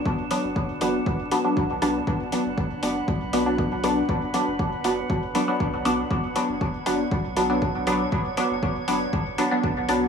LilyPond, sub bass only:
\new Staff \with { instrumentName = "Sub bass" } { \clef bass \time 4/4 \key b \minor \tempo 4 = 119 b,,16 r8 fis,,4 r4 r16 b,,8. r16 | b,,16 r8 fis,,4 r16 b,,4.~ b,,16 r16 | b,,16 r8 fis,,4 r4 r16 b,,8. r16 | b,,16 r8 fis,,4 r16 b,,4.~ b,,16 r16 |
b,,16 r8 fis,,4 r4 r16 b,,8. r16 | }